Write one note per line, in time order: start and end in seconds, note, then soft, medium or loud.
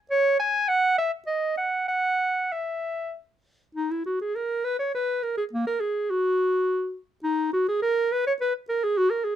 0.10 0.39 C#5 medium
0.40 0.70 G#5 medium
0.68 0.98 F#5 medium
0.98 1.11 E5 medium
1.27 1.57 D#5 medium
1.57 1.87 F#5 medium
1.88 2.54 F#5 medium
2.52 3.13 E5 medium
3.75 3.92 D#4 medium
3.91 4.05 E4 medium
4.06 4.20 F#4 medium
4.21 4.37 G#4 medium
4.35 4.66 A#4 medium
4.65 4.79 B4 medium
4.79 4.94 C#5 medium
4.95 5.24 B4 medium
5.23 5.37 A#4 medium
5.37 5.44 G#4 medium
5.53 5.66 A#3 medium
5.67 5.82 A#4 medium
5.80 6.12 G#4 medium
6.10 6.96 F#4 medium
7.24 7.51 D#4 medium
7.53 7.68 F#4 medium
7.69 7.81 G#4 medium
7.82 8.13 A#4 medium
8.12 8.26 B4 medium
8.27 8.33 C#5 medium
8.41 8.54 B4 medium
8.69 8.85 A#4 medium
8.84 8.99 G#4 medium
8.97 9.12 F#4 medium
9.10 9.26 A#4 medium
9.24 9.36 G#4 medium